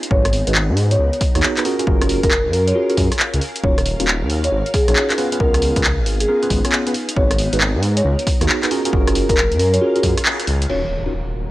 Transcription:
Already playing: string machine D#4
0.03 closed hi-hat
0.10 detuned saw bass G#1, string machine B3 F#4 A#4, tine electric piano B3 D#4 F#4 G#4 B4, marimba C#5, kick
0.25 cross-stick, closed hi-hat
0.33 open hi-hat
0.47 detuned saw bass G#1, tine electric piano B3 D#4 F#4 G#4 B4, closed hi-hat
0.55 clap
0.69 detuned saw bass G#2
0.77 open hi-hat
0.91 marimba C#5, closed hi-hat
0.99 detuned saw bass C#2
1.13 closed hi-hat
1.21 kick, open hi-hat
1.35 detuned saw bass D#2, tine electric piano B3 D#4 F#4 G#4 C#5, cross-stick, closed hi-hat
1.43 clap
1.57 tine electric piano B3 D#4 F#4 G#4 B4, clap, closed hi-hat
1.65 string machine C#4 G#4 F5, tine electric piano C#4 F4 F#4 G#4 A#4, open hi-hat
1.79 tine electric piano C#4 F4 F#4 G#4 A#4, closed hi-hat
1.87 detuned saw bass F#1, tine electric piano C#4 F4 F#4 G#4 A#4, kick
2.01 cross-stick, closed hi-hat
2.09 open hi-hat
2.23 detuned saw bass F#1, tine electric piano C#4 F4 F#4 G#4 A#4, marimba A#4, kick, closed hi-hat
2.31 clap
2.46 detuned saw bass F#2
2.53 marimba A#4, open hi-hat
2.67 marimba C#5, closed hi-hat
2.75 tine electric piano C#4 F4 F#4 G#4 A#4
2.90 tine electric piano C#4 F4 F#4 G#4 A#4, closed hi-hat
2.97 detuned saw bass F#2, tine electric piano C#4 F4 F#4 G#4 A#4, kick, open hi-hat
3.12 cross-stick, closed hi-hat
3.19 clap
3.34 detuned saw bass C#2, closed hi-hat
3.41 open hi-hat
3.56 closed hi-hat
3.64 detuned saw bass D#1, tine electric piano C#4 D#4 F4 F#4 A#4, string machine C#4 F#4, marimba C#5, kick
3.78 cross-stick, closed hi-hat
3.86 open hi-hat
4.00 detuned saw bass D#1, tine electric piano C#4 D#4 F4 F#4 A#4, closed hi-hat
4.08 clap
4.22 detuned saw bass D#2
4.30 open hi-hat
4.44 marimba C#5, closed hi-hat
4.52 detuned saw bass G#1
4.66 closed hi-hat
4.74 marimba G#4, kick, open hi-hat
4.88 detuned saw bass A#1, tine electric piano C#4 D#4 F4 F#4 C#5, marimba G#4, cross-stick, closed hi-hat
4.96 clap
5.10 tine electric piano C#4 D#4 F4 F#4 A#4, clap, closed hi-hat
5.18 tine electric piano B3 C#4 F4 G#4 B4, string machine B3 D#4 G#4, open hi-hat
5.32 tine electric piano B3 C#4 F4 G#4 B4, closed hi-hat
5.40 detuned saw bass C#2, tine electric piano B3 C#4 F4 G#4, marimba A#4, kick
5.54 marimba A#4, cross-stick, closed hi-hat
5.62 open hi-hat
5.76 detuned saw bass C#2, tine electric piano B3 C#4 F4 G#4 B4, kick, closed hi-hat
5.84 clap
5.98 detuned saw bass G#1
6.06 open hi-hat
6.20 marimba G#4, closed hi-hat
6.28 tine electric piano B3 C#4 F4 G#4 A#4, marimba G#4
6.43 tine electric piano B3 C#4 F4 G#4 B4, closed hi-hat
6.50 detuned saw bass G#1, kick, open hi-hat
6.65 tine electric piano B3 C#4 F4 G#4 C#5, cross-stick, closed hi-hat
6.72 clap
6.87 tine electric piano B3 C#4 F4 G#4 B4, closed hi-hat
6.94 open hi-hat
7.09 closed hi-hat
7.16 detuned saw bass G#1, tine electric piano B3 D#4 F#4 G#4 B4, string machine F#4 A#4, marimba C#5, kick
7.31 cross-stick, closed hi-hat
7.38 open hi-hat
7.53 detuned saw bass G#1, tine electric piano B3 D#4 F#4 G#4 B4, closed hi-hat
7.61 clap
7.75 detuned saw bass G#2
7.83 open hi-hat
7.97 marimba C#5, closed hi-hat
8.05 detuned saw bass C#2
8.19 closed hi-hat
8.27 kick, open hi-hat
8.41 detuned saw bass D#2, tine electric piano B3 D#4 F#4 G#4 C#5, cross-stick, closed hi-hat
8.49 clap
8.63 tine electric piano B3 D#4 F#4 G#4 B4, clap, closed hi-hat
8.71 tine electric piano C#4 F4 F#4 G#4 A#4, string machine C#4 G#4 F5, open hi-hat
8.85 tine electric piano C#4 F4 F#4 G#4 A#4, closed hi-hat
8.93 detuned saw bass F#1, tine electric piano C#4 F4 F#4 G#4, kick
9.07 cross-stick, closed hi-hat
9.15 open hi-hat
9.29 detuned saw bass F#1, tine electric piano C#4 F4 F#4 G#4 A#4, marimba A#4, kick, closed hi-hat
9.37 clap
9.52 detuned saw bass F#2, closed hi-hat
9.59 marimba A#4, open hi-hat
9.73 marimba C#5, closed hi-hat
9.81 tine electric piano C#4 F4 F#4 G#4 A#4
9.96 tine electric piano C#4 F4 F#4 G#4 A#4, closed hi-hat
10.03 detuned saw bass F#2, tine electric piano C#4 F4 F#4 G#4 A#4, kick, open hi-hat
10.18 cross-stick, closed hi-hat
10.25 clap
10.40 closed hi-hat
10.47 detuned saw bass C#2, open hi-hat
10.62 closed hi-hat
10.69 detuned saw bass D#1, tine electric piano C#4 D#4 F4 F#4 A#4, string machine C#4 F4 F#4 A#4, marimba C#5, crash, impact
11.06 tine electric piano C#4 D#4 F4 F#4 A#4

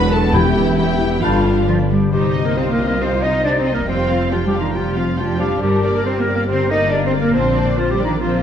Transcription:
Already playing: double bass section E1, cello section E2, harp E3 F#3 D4 F#4 D5 B5, trombone section F#3 D4, violin section B3 B5, french horn section B4, viola section B4
0.01 harp F#5
0.11 viola section A4, french horn section A4, violin section A5, harp B5
0.23 harp D5
0.33 timpani E2, trombone section E3 B3, harp E3, clarinet E4, violin section E4 G5, french horn section G4, viola section G4, oboe G5, flute section B5
0.46 harp G3
0.57 harp E4
0.68 harp G4
0.77 french horn section G4, viola section G4, violin section G5, harp B5
0.90 harp G5
1.01 harp B5
1.12 harp E5
1.21 double bass section G1, harp G2, cello section G2, trombone section D3, violin section D4 F5, clarinet D4, french horn section F4, viola section F4, oboe G5, flute section B5
1.35 harp D3
1.45 harp G3
1.57 harp B4
1.68 cello section F3, clarinet F4, harp D5
1.78 harp B5
1.89 cello section G3, clarinet G4, harp D5
2.01 harp G4
2.12 double bass section C2, harp C3, cello section G3, violin section D#4 C5, viola section D#4 G4, clarinet G4
2.32 harp G3, viola section C4, violin section D#5
2.37 viola section D#4
2.45 cello section A#3, clarinet A#4
2.57 cello section C4, viola section D#4 G4, violin section F4 C5, harp C5, clarinet C5
2.71 cello section A#3, clarinet A#4
2.79 viola section C4 D#4, harp D#5, violin section D#5
2.86 cello section A#3, clarinet A#4
3.01 harp C4, cello section C4, viola section D#4 G4, violin section C5, clarinet C5
3.22 harp G3, viola section C4 D#4, cello section D#4, clarinet D#5, violin section D#5
3.44 cello section D4, viola section D#4 G4, violin section D#4 C5, harp C5, clarinet D5
3.59 cello section C4, clarinet C5
3.66 viola section C4 D#4, harp D#5, violin section D#5
3.74 cello section A#3, clarinet A#4
3.88 double bass section F1, harp F2, viola section G3 G4, cello section C4, violin section F4 G5, clarinet C5
4.08 harp G3, viola section C4 F4, violin section F5
4.30 cello section F3, viola section G3 G4, violin section D4 G5, clarinet F4, harp C5
4.46 cello section G3, clarinet G4
4.53 viola section C4 F4, violin section F5, harp F5
4.61 cello section D#3, clarinet D#4
4.73 harp C3, cello section F3, viola section G3 G4, violin section C4 G5, clarinet F4
4.95 harp G3, viola section C4 F4, violin section F5
5.17 cello section F3, viola section G3 G4, violin section D4 G5, clarinet F4, harp C5
5.39 cello section G3, viola section C4 F4, clarinet G4, violin section F5, harp F5
5.62 double bass section G1, harp G2, viola section G3 G4, cello section G3, clarinet G4, violin section A#4
5.83 viola section A#3 A#4, harp A#3, violin section D5
5.95 cello section A#3, clarinet A#4
6.05 viola section G3 G4, cello section C4, violin section C4 A#4, harp A#4, clarinet C5
6.20 cello section A#3, clarinet A#4
6.27 viola section A#3 A#4, violin section D5, harp D5
6.35 cello section A#3, clarinet A#4
6.48 harp D3, viola section G3 G4, cello section C4, violin section A#4, clarinet C5
6.70 viola section A#3 A#4, harp A#3, cello section D#4, violin section D5, clarinet D#5
6.91 viola section G3 G4, violin section A#3 A#4, cello section D4, harp A#4, clarinet D5
7.06 cello section C4, clarinet C5
7.14 viola section A#3 A#4, harp D5, violin section D5
7.20 cello section A#3, clarinet A#4
7.33 double bass section A#1, harp A#2, viola section C4 F4, cello section C4, violin section D4 C5, clarinet C5
7.56 viola section A#3 D4, harp C4, violin section D5
7.77 cello section F3, viola section C4 F4, violin section C4 C5, clarinet F4, harp A#4
7.91 cello section G3, clarinet G4
7.99 viola section A#3 D4, harp D5, violin section D5
8.04 cello section D#3, clarinet D#4
8.18 harp F3, cello section F3, violin section A#3 C5, viola section C4 F4, clarinet F4

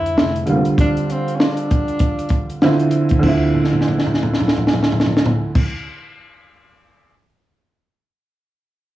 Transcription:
Already playing: upright bass F2, upright piano D3 F3 G3 C4, tenor saxophone E4
0.06 closed hi-hat
0.17 upright bass F1, snare
0.36 closed hi-hat
0.46 upright piano D3 G3 A#3 F4, closed hi-hat
0.55 upright piano C4
0.65 muted upright bass stroke, closed hi-hat
0.78 tenor saxophone D4, kick, closed hi-hat
0.97 closed hi-hat
1.10 tenor saxophone C4, closed hi-hat
1.28 closed hi-hat
1.36 tenor saxophone C#4
1.40 tenor saxophone D4, snare
1.57 closed hi-hat
1.71 kick, closed hi-hat
1.88 closed hi-hat
1.99 kick, closed hi-hat
2.19 closed hi-hat
2.29 kick, closed hi-hat
2.50 closed hi-hat
2.62 upright piano D3 F3 C4 E4, snare
2.80 closed hi-hat
2.91 closed hi-hat
3.09 kick, closed hi-hat
3.19 upright bass D2, upright piano D3 F3, kick, crash
3.24 upright piano C4 E4
3.54 floor tom
3.64 snare
3.73 floor tom
3.81 snare
3.88 floor tom
3.98 snare
4.06 floor tom
4.14 snare
4.23 floor tom
4.33 snare
4.40 floor tom
4.48 snare
4.58 floor tom
4.67 snare
4.73 floor tom
4.83 snare
4.92 floor tom
5.00 snare
5.06 floor tom
5.17 snare
5.26 floor tom
5.55 kick, crash

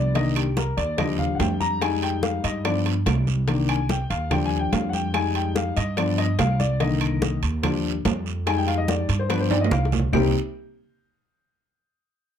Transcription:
Already playing: upright bass C2, grand piano F3 B3 D4 D5
0.14 grand piano D#3 A#3 D4 D#5, high bongo, high conga, high timbale, long guiro
0.36 grand piano G4, high conga, high timbale, claves
0.57 grand piano A#4, high bongo, high conga, low timbale, short guiro
0.77 upright bass D#2, grand piano D5, high conga, high timbale, short guiro
0.97 grand piano F3 G3 D4 D#5, high bongo, high conga, low conga, high timbale, long guiro, claves
1.19 grand piano F5, high conga, low conga
1.35 grand piano F#5
1.40 upright bass F2, grand piano G5, high bongo, low bongo, high conga, high timbale, low timbale, short guiro
1.60 grand piano A#5, high conga, short guiro
1.81 grand piano G3 G#3 D#4 G#5, high bongo, high conga, high timbale, long guiro, claves
2.02 grand piano G5, high conga, high timbale
2.23 grand piano F5, high bongo, high conga, low timbale, short guiro
2.44 upright bass G2, grand piano D#5, high bongo, high conga, high timbale, short guiro
2.64 grand piano F3 B3 D4 D5, high bongo, high conga, high timbale, long guiro, claves
2.85 high bongo, high conga, high timbale
3.06 upright bass C2, high bongo, low bongo, high conga, high timbale, low timbale, short guiro, claves
3.27 high bongo, high conga, short guiro
3.48 grand piano D#3 A#3 D4, high bongo, high timbale, long guiro
3.69 grand piano G#5, high conga, high timbale, claves
3.89 grand piano G5, high bongo, high conga, low timbale, short guiro
4.10 upright bass D#2, grand piano F5, high conga, high timbale, short guiro
4.30 grand piano F3 G3 D4 G5, high bongo, high conga, low conga, high timbale, long guiro, claves
4.45 grand piano G#5
4.52 high conga
4.59 grand piano G5
4.73 upright bass F2, grand piano F5, high bongo, low bongo, high conga, high timbale, low timbale, short guiro
4.89 grand piano F#5
4.93 grand piano G5, high conga, short guiro
5.13 grand piano G3 G#3 D#4 G#5, high bongo, high timbale, long guiro, claves
5.35 grand piano G5, high conga, high timbale
5.55 grand piano F5, high bongo, high conga, low timbale, short guiro
5.76 upright bass G2, grand piano D#5, high bongo, high conga, high timbale, short guiro
5.97 grand piano F3 B3 D4 D5, high bongo, high conga, high timbale, long guiro, claves
6.18 grand piano D#5, high bongo, high conga, high timbale
6.39 upright bass C2, grand piano F5, high bongo, low bongo, high conga, high timbale, low timbale, short guiro, claves
6.59 grand piano D5, high bongo, high conga, short guiro
6.80 grand piano D3 D#3 A#3 D#5, high bongo, high conga, high timbale, long guiro
7.01 high conga, high timbale, claves
7.22 high bongo, high conga, low timbale, short guiro
7.43 upright bass D#2, high conga, high timbale, short guiro
7.63 grand piano F3 G3 D4, high bongo, high conga, low conga, high timbale, long guiro, claves
7.85 high conga
8.05 upright bass F2, high bongo, low bongo, high conga, high timbale, low timbale, short guiro
8.26 short guiro
8.46 grand piano G3 G#3 D#4 G#5, high bongo, high conga, high timbale, long guiro, claves
8.57 grand piano G5
8.67 grand piano F5, high conga, high timbale
8.78 grand piano D#5
8.88 grand piano D5, high bongo, high conga, low timbale, short guiro
9.09 upright bass G2, high bongo, high conga, high timbale, short guiro
9.19 grand piano C5
9.29 grand piano F3 B3 D4 B4, high bongo, high conga, high timbale, long guiro, claves
9.40 grand piano C5
9.51 grand piano D5, high bongo, high conga, high timbale
9.61 grand piano D#5, low timbale
9.71 upright bass C2, grand piano F5, high bongo, low conga, short guiro, claves
9.85 high bongo
9.92 low conga, low timbale, short guiro
9.99 low bongo
10.13 upright bass C2, grand piano C3 G3 A#3 C4 D#4 G4, low bongo, low conga, low timbale, long guiro, claves

